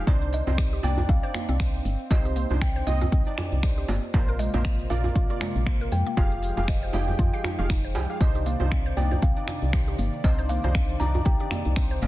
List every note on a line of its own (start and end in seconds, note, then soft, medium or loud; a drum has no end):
0.07 0.42 C2 loud
0.07 4.10 C4 medium
0.07 0.20 C4 medium
0.07 0.44 D4 loud
0.07 0.44 D#4 medium
0.07 0.44 C5 loud
0.07 0.31 D5 loud
0.07 kick loud
0.07 closed hi-hat medium
0.07 djembe slap medium
0.07 djembe tone medium
0.07 cabasa soft
0.22 closed hi-hat soft
0.22 cabasa soft
0.33 0.86 D#5 loud
0.33 open hi-hat medium
0.33 cabasa medium
0.47 0.80 C2 medium
0.47 0.81 C4 medium
0.47 0.81 D#4 medium
0.47 0.81 C5 loud
0.47 djembe tone loud
0.47 cabasa soft
0.58 0.71 G4 medium
0.58 finger snap loud
0.58 kick loud
0.58 closed hi-hat medium
0.58 cabasa medium
0.73 0.83 G4 medium
0.73 closed hi-hat soft
0.73 cabasa soft
0.83 1.04 C2 loud
0.83 0.91 A#3 medium
0.83 1.20 D4 loud
0.83 1.20 D#4 medium
0.83 1.20 D5 loud
0.83 1.10 G5 loud
0.83 open hi-hat medium
0.83 djembe tone medium
0.83 cabasa medium
0.98 closed hi-hat soft
0.98 djembe bass loud
0.98 cabasa soft
1.09 1.20 C2 loud
1.09 1.22 C4 loud
1.09 2.14 F5 loud
1.09 kick loud
1.09 closed hi-hat medium
1.09 cabasa medium
1.23 1.57 D4 medium
1.23 1.57 D#4 medium
1.23 1.34 C5 loud
1.23 1.57 D5 medium
1.23 closed hi-hat soft
1.23 cabasa soft
1.34 1.48 A#3 medium
1.34 finger snap medium
1.34 open hi-hat medium
1.34 djembe tone medium
1.34 cabasa medium
1.49 1.81 C2 medium
1.49 1.55 C4 loud
1.49 closed hi-hat soft
1.49 cabasa soft
1.60 1.73 C4 medium
1.60 1.82 D4 medium
1.60 1.82 D#4 medium
1.60 1.82 C5 medium
1.60 finger snap loud
1.60 kick loud
1.60 closed hi-hat medium
1.60 cabasa soft
1.74 closed hi-hat soft
1.74 cabasa soft
1.85 1.97 G1 loud
1.85 open hi-hat loud
1.85 cabasa medium
1.99 cabasa soft
2.10 2.46 C2 loud
2.10 2.47 C4 loud
2.10 2.47 D#4 medium
2.10 2.24 G4 medium
2.10 2.47 C5 loud
2.10 2.58 D#5 loud
2.10 kick loud
2.10 closed hi-hat medium
2.10 djembe slap medium
2.10 djembe tone medium
2.10 cabasa medium
2.25 2.35 G4 medium
2.25 closed hi-hat soft
2.25 cabasa soft
2.36 2.44 A#3 medium
2.36 open hi-hat loud
2.36 cabasa medium
2.50 2.83 C2 medium
2.50 2.84 D4 medium
2.50 2.84 D#4 medium
2.50 2.84 C5 loud
2.50 djembe tone medium
2.50 cabasa soft
2.61 2.75 C4 loud
2.61 2.88 G5 loud
2.61 finger snap loud
2.61 kick loud
2.61 closed hi-hat medium
2.61 cabasa medium
2.76 2.86 C5 loud
2.76 closed hi-hat soft
2.76 cabasa soft
2.87 3.08 C2 loud
2.87 3.01 A#3 medium
2.87 3.23 C4 loud
2.87 3.23 D#4 medium
2.87 3.23 D#5 loud
2.87 3.34 D#5 medium
2.87 open hi-hat medium
2.87 djembe tone medium
2.87 cabasa medium
3.01 3.07 C4 loud
3.01 closed hi-hat soft
3.01 djembe bass medium
3.01 cabasa soft
3.12 3.24 C2 loud
3.12 3.25 C4 medium
3.12 kick loud
3.12 closed hi-hat medium
3.12 cabasa medium
3.27 3.60 D4 medium
3.27 3.60 D#4 medium
3.27 3.60 D5 loud
3.27 closed hi-hat soft
3.27 cabasa soft
3.38 3.62 D5 medium
3.38 finger snap medium
3.38 open hi-hat loud
3.38 djembe tone loud
3.38 djembe bass medium
3.38 cabasa loud
3.52 3.85 C2 medium
3.52 closed hi-hat soft
3.52 cabasa soft
3.63 3.86 D4 medium
3.63 3.86 D#4 medium
3.63 3.76 G4 medium
3.63 3.86 C5 loud
3.63 4.00 D5 medium
3.63 finger snap loud
3.63 kick loud
3.63 closed hi-hat medium
3.63 cabasa medium
3.77 3.87 G4 medium
3.77 closed hi-hat soft
3.77 cabasa soft
3.88 4.00 G1 loud
3.88 3.96 A#3 medium
3.88 open hi-hat loud
3.88 djembe slap medium
3.88 djembe tone medium
3.88 cabasa loud
4.02 cabasa soft
4.13 4.49 A#1 loud
4.13 6.15 C3 medium
4.13 6.15 A#3 medium
4.13 4.27 A#3 loud
4.13 6.15 F4 medium
4.13 4.50 F4 loud
4.13 4.50 A#4 medium
4.13 4.50 C5 loud
4.13 kick loud
4.13 closed hi-hat medium
4.13 djembe slap medium
4.13 djembe tone medium
4.13 cabasa medium
4.28 4.39 A#4 loud
4.28 closed hi-hat soft
4.28 cabasa soft
4.39 4.53 G#3 medium
4.39 4.87 D#5 loud
4.39 open hi-hat medium
4.39 cabasa loud
4.54 4.87 A#1 medium
4.54 4.60 A#3 loud
4.54 4.88 F4 medium
4.54 4.88 A#4 medium
4.54 4.88 C5 medium
4.54 djembe tone loud
4.54 cabasa soft
4.65 4.78 A#3 medium
4.65 finger snap loud
4.65 kick loud
4.65 closed hi-hat medium
4.65 cabasa medium
4.79 closed hi-hat soft
4.79 cabasa soft
4.90 5.11 A#1 loud
4.90 5.27 F4 loud
4.90 5.27 A#4 medium
4.90 5.27 D5 loud
4.90 5.62 F5 loud
4.90 open hi-hat medium
4.90 djembe tone medium
4.90 cabasa loud
5.04 closed hi-hat soft
5.04 djembe bass medium
5.04 cabasa soft
5.16 5.27 A#1 loud
5.16 5.29 F4 medium
5.16 kick loud
5.16 closed hi-hat medium
5.16 cabasa medium
5.30 5.64 F4 medium
5.30 5.40 F4 medium
5.30 5.64 A#4 medium
5.30 5.64 D5 medium
5.30 closed hi-hat soft
5.30 cabasa soft
5.41 5.49 G#3 medium
5.41 finger snap medium
5.41 open hi-hat loud
5.41 djembe tone medium
5.41 cabasa loud
5.56 5.88 A#1 medium
5.56 closed hi-hat soft
5.56 cabasa soft
5.66 5.80 A#3 loud
5.66 5.89 F4 medium
5.66 5.89 C5 medium
5.66 finger snap loud
5.66 kick loud
5.66 closed hi-hat medium
5.66 cabasa medium
5.81 5.92 A#4 loud
5.81 closed hi-hat soft
5.81 cabasa soft
5.92 6.03 F2 loud
5.92 6.06 G#3 medium
5.92 6.18 G5 loud
5.92 open hi-hat medium
5.92 cabasa medium
6.06 6.12 A#3 loud
6.06 cabasa soft
6.17 6.52 F1 loud
6.17 8.19 F3 medium
6.17 8.19 G#3 medium
6.17 6.31 F4 medium
6.17 6.54 G4 loud
6.17 6.54 G#4 medium
6.17 6.54 F5 loud
6.17 6.70 F5 loud
6.17 8.19 G5 medium
6.17 kick loud
6.17 closed hi-hat medium
6.17 djembe slap medium
6.17 djembe tone medium
6.17 cabasa medium
6.32 closed hi-hat soft
6.32 cabasa soft
6.43 open hi-hat medium
6.43 cabasa loud
6.57 6.90 F1 loud
6.57 6.91 G4 medium
6.57 6.91 G#4 medium
6.57 6.91 F5 loud
6.57 closed hi-hat soft
6.57 djembe tone medium
6.57 cabasa soft
6.68 6.81 C5 medium
6.68 6.95 D#5 medium
6.68 finger snap loud
6.68 kick loud
6.68 closed hi-hat medium
6.68 cabasa medium
6.83 6.93 C5 medium
6.83 closed hi-hat soft
6.83 cabasa soft
6.93 7.14 F1 medium
6.93 7.02 D#4 medium
6.93 7.30 G4 loud
6.93 7.30 G#4 medium
6.93 7.92 F5 loud
6.93 7.30 G5 loud
6.93 open hi-hat medium
6.93 djembe tone loud
6.93 cabasa medium
7.08 closed hi-hat soft
7.08 djembe bass medium
7.08 cabasa soft
7.19 7.30 F2 medium
7.19 7.32 F4 loud
7.19 kick loud
7.19 closed hi-hat medium
7.19 cabasa medium
7.33 7.56 G4 medium
7.33 7.56 G#4 medium
7.33 7.44 F5 loud
7.33 7.56 G5 medium
7.33 closed hi-hat soft
7.33 cabasa soft
7.44 7.58 D#4 medium
7.44 finger snap medium
7.44 open hi-hat medium
7.44 djembe tone loud
7.44 djembe bass loud
7.44 cabasa loud
7.59 7.97 F1 medium
7.59 7.69 F4 medium
7.59 7.71 G4 medium
7.59 7.71 G#4 medium
7.59 7.71 F5 loud
7.59 closed hi-hat soft
7.59 cabasa soft
7.70 7.83 D#4 medium
7.70 finger snap loud
7.70 kick loud
7.70 closed hi-hat medium
7.70 cabasa medium
7.84 7.94 C5 medium
7.84 closed hi-hat soft
7.84 cabasa soft
7.95 8.07 C2 medium
7.95 8.07 G4 medium
7.95 8.07 G#4 medium
7.95 8.07 G5 medium
7.95 open hi-hat medium
7.95 djembe slap medium
7.95 djembe tone medium
7.95 cabasa loud
8.10 8.18 G4 medium
8.10 8.18 G#4 medium
8.10 8.18 F5 medium
8.10 cabasa soft
8.20 8.56 C2 loud
8.20 12.07 C3 medium
8.20 12.07 D#3 medium
8.20 8.57 D4 loud
8.20 8.57 D#4 medium
8.20 8.34 G4 medium
8.20 8.57 C5 loud
8.20 12.07 D5 medium
8.20 8.47 D#5 medium
8.20 kick loud
8.20 closed hi-hat medium
8.20 djembe slap medium
8.20 djembe tone medium
8.20 cabasa soft
8.35 8.45 G4 medium
8.35 closed hi-hat soft
8.35 cabasa soft
8.46 8.54 A#3 medium
8.46 8.99 F5 medium
8.46 open hi-hat medium
8.46 cabasa medium
8.60 8.93 C2 medium
8.60 8.94 D4 medium
8.60 8.94 D#4 medium
8.60 8.94 C5 loud
8.60 djembe tone medium
8.60 cabasa soft
8.72 8.85 C4 loud
8.72 finger snap loud
8.72 kick loud
8.72 closed hi-hat medium
8.72 cabasa soft
8.86 8.96 C5 loud
8.86 closed hi-hat soft
8.86 cabasa soft
8.97 9.18 C2 medium
8.97 9.11 A#3 medium
8.97 9.33 D4 medium
8.97 9.33 D#4 medium
8.97 9.33 D5 loud
8.97 9.21 G5 medium
8.97 open hi-hat medium
8.97 djembe tone medium
8.97 cabasa loud
9.11 9.17 C5 medium
9.11 closed hi-hat soft
9.11 djembe bass medium
9.11 cabasa soft
9.22 9.34 C2 loud
9.22 9.35 C4 medium
9.22 10.27 F5 loud
9.22 kick loud
9.22 closed hi-hat medium
9.22 cabasa medium
9.37 9.71 D4 medium
9.37 9.71 D#4 medium
9.37 9.71 D5 medium
9.37 closed hi-hat soft
9.37 cabasa soft
9.48 finger snap medium
9.48 open hi-hat medium
9.48 djembe tone medium
9.48 cabasa loud
9.62 9.95 C2 medium
9.62 closed hi-hat soft
9.62 cabasa soft
9.73 9.96 D4 medium
9.73 9.96 D#4 medium
9.73 9.86 G4 medium
9.73 9.96 C5 medium
9.73 finger snap loud
9.73 kick loud
9.73 closed hi-hat medium
9.73 cabasa medium
9.88 9.98 G4 medium
9.88 closed hi-hat soft
9.88 cabasa soft
9.98 10.10 G1 loud
9.98 10.07 A#3 medium
9.98 open hi-hat medium
9.98 cabasa medium
10.13 cabasa soft
10.24 10.59 C2 loud
10.24 10.37 C4 loud
10.24 10.61 D4 loud
10.24 10.61 D#4 medium
10.24 10.61 C5 loud
10.24 10.48 D#5 loud
10.24 kick loud
10.24 closed hi-hat medium
10.24 djembe slap medium
10.24 djembe tone medium
10.24 cabasa soft
10.38 10.49 C5 loud
10.38 closed hi-hat soft
10.38 cabasa soft
10.49 10.63 A#3 medium
10.49 11.02 F5 loud
10.49 open hi-hat medium
10.49 cabasa loud
10.64 10.97 C2 medium
10.64 10.98 D4 medium
10.64 10.98 D#4 medium
10.64 10.98 C5 loud
10.64 10.70 C5 medium
10.64 djembe tone medium
10.64 cabasa soft
10.75 10.88 C4 medium
10.75 finger snap loud
10.75 kick loud
10.75 closed hi-hat medium
10.75 cabasa soft
10.89 closed hi-hat soft
10.89 cabasa soft
11.00 11.21 C2 medium
11.00 11.37 D4 loud
11.00 11.37 D#4 medium
11.00 11.37 D5 loud
11.00 11.26 A#5 loud
11.00 open hi-hat medium
11.00 djembe tone medium
11.00 cabasa medium
11.14 closed hi-hat soft
11.14 djembe bass medium
11.14 cabasa soft
11.25 11.37 C2 loud
11.25 11.39 G4 medium
11.25 12.07 G5 loud
11.25 kick loud
11.25 closed hi-hat medium
11.25 cabasa medium
11.40 11.74 D4 medium
11.40 11.74 D#4 medium
11.40 11.50 G4 medium
11.40 11.74 D5 medium
11.40 closed hi-hat soft
11.40 cabasa soft
11.51 11.59 A#3 medium
11.51 finger snap medium
11.51 open hi-hat medium
11.51 djembe tone medium
11.51 djembe bass medium
11.51 cabasa medium
11.65 11.98 C2 medium
11.65 closed hi-hat soft
11.65 cabasa soft
11.76 11.90 C4 loud
11.76 11.99 D4 medium
11.76 11.99 D#4 medium
11.76 11.99 C5 medium
11.76 finger snap loud
11.76 kick loud
11.76 closed hi-hat medium
11.76 cabasa soft
11.91 12.01 C5 loud
11.91 closed hi-hat soft
11.91 cabasa soft
12.02 12.07 G1 loud
12.02 12.07 A#3 medium
12.02 open hi-hat medium
12.02 djembe slap medium
12.02 djembe tone medium
12.02 cabasa medium